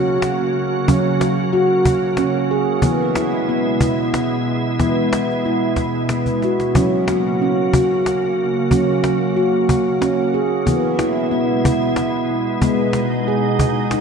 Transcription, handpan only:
0, 0, Header, 1, 2, 480
1, 0, Start_track
1, 0, Tempo, 652884
1, 640, Time_signature, 3, 2, 24, 8
1, 10297, End_track
2, 0, Start_track
2, 0, Title_t, "Handpan"
2, 0, Program_c, 0, 114
2, 0, Note_on_c, 0, 54, 71
2, 0, Note_on_c, 0, 66, 63
2, 404, Note_off_c, 0, 66, 0
2, 614, Note_off_c, 0, 54, 0
2, 645, Note_on_c, 0, 54, 72
2, 646, Note_on_c, 0, 61, 77
2, 1124, Note_on_c, 0, 66, 75
2, 1125, Note_off_c, 0, 61, 0
2, 1604, Note_on_c, 0, 61, 77
2, 1605, Note_off_c, 0, 66, 0
2, 1845, Note_off_c, 0, 61, 0
2, 1845, Note_on_c, 0, 68, 67
2, 2059, Note_off_c, 0, 54, 0
2, 2076, Note_on_c, 0, 59, 80
2, 2086, Note_off_c, 0, 68, 0
2, 2088, Note_on_c, 0, 52, 75
2, 2321, Note_off_c, 0, 59, 0
2, 2326, Note_on_c, 0, 64, 60
2, 2564, Note_on_c, 0, 59, 74
2, 2567, Note_off_c, 0, 64, 0
2, 2806, Note_off_c, 0, 59, 0
2, 2806, Note_on_c, 0, 64, 61
2, 3287, Note_off_c, 0, 64, 0
2, 3500, Note_off_c, 0, 52, 0
2, 3523, Note_on_c, 0, 59, 74
2, 3528, Note_on_c, 0, 52, 72
2, 4006, Note_off_c, 0, 59, 0
2, 4010, Note_on_c, 0, 64, 68
2, 4489, Note_off_c, 0, 64, 0
2, 4491, Note_on_c, 0, 59, 70
2, 4729, Note_off_c, 0, 59, 0
2, 4735, Note_on_c, 0, 66, 61
2, 4939, Note_off_c, 0, 52, 0
2, 4967, Note_on_c, 0, 54, 72
2, 4971, Note_off_c, 0, 66, 0
2, 4975, Note_on_c, 0, 61, 74
2, 5211, Note_off_c, 0, 61, 0
2, 5218, Note_on_c, 0, 66, 63
2, 5452, Note_off_c, 0, 66, 0
2, 5453, Note_on_c, 0, 61, 70
2, 5690, Note_off_c, 0, 61, 0
2, 5692, Note_on_c, 0, 66, 61
2, 6169, Note_off_c, 0, 66, 0
2, 6377, Note_off_c, 0, 54, 0
2, 6402, Note_on_c, 0, 54, 69
2, 6410, Note_on_c, 0, 61, 76
2, 6884, Note_on_c, 0, 66, 70
2, 6887, Note_off_c, 0, 61, 0
2, 7362, Note_on_c, 0, 61, 73
2, 7363, Note_off_c, 0, 66, 0
2, 7602, Note_off_c, 0, 61, 0
2, 7602, Note_on_c, 0, 68, 65
2, 7812, Note_off_c, 0, 54, 0
2, 7839, Note_on_c, 0, 59, 80
2, 7842, Note_off_c, 0, 68, 0
2, 7843, Note_on_c, 0, 52, 74
2, 8077, Note_on_c, 0, 64, 63
2, 8080, Note_off_c, 0, 59, 0
2, 8317, Note_on_c, 0, 59, 75
2, 8319, Note_off_c, 0, 64, 0
2, 8558, Note_off_c, 0, 59, 0
2, 8564, Note_on_c, 0, 64, 66
2, 9041, Note_off_c, 0, 64, 0
2, 9250, Note_off_c, 0, 52, 0
2, 9276, Note_on_c, 0, 59, 84
2, 9279, Note_on_c, 0, 56, 74
2, 9756, Note_off_c, 0, 59, 0
2, 9762, Note_on_c, 0, 68, 69
2, 10239, Note_off_c, 0, 68, 0
2, 10243, Note_on_c, 0, 63, 70
2, 10297, Note_off_c, 0, 56, 0
2, 10297, Note_off_c, 0, 63, 0
2, 10297, End_track
0, 0, End_of_file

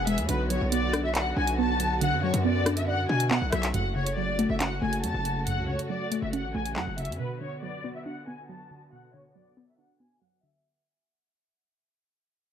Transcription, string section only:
0, 0, Header, 1, 2, 480
1, 0, Start_track
1, 0, Tempo, 431655
1, 319, Time_signature, 4, 2, 24, 8
1, 13923, End_track
2, 0, Start_track
2, 0, Title_t, "String section"
2, 0, Program_c, 0, 48
2, 0, Note_on_c, 0, 52, 77
2, 0, Note_on_c, 0, 59, 72
2, 0, Note_on_c, 0, 68, 89
2, 280, Note_off_c, 0, 68, 0
2, 281, Note_off_c, 0, 52, 0
2, 321, Note_on_c, 0, 50, 80
2, 321, Note_on_c, 0, 66, 89
2, 4116, Note_off_c, 0, 59, 0
2, 4122, Note_off_c, 0, 50, 0
2, 4122, Note_off_c, 0, 66, 0
2, 4160, Note_on_c, 0, 57, 68
2, 4161, Note_on_c, 0, 49, 76
2, 4161, Note_on_c, 0, 66, 85
2, 7961, Note_off_c, 0, 57, 0
2, 7962, Note_off_c, 0, 49, 0
2, 7962, Note_off_c, 0, 66, 0
2, 8002, Note_on_c, 0, 50, 77
2, 8002, Note_on_c, 0, 59, 70
2, 8002, Note_on_c, 0, 66, 84
2, 11802, Note_off_c, 0, 50, 0
2, 11802, Note_off_c, 0, 59, 0
2, 11802, Note_off_c, 0, 66, 0
2, 13923, End_track
0, 0, End_of_file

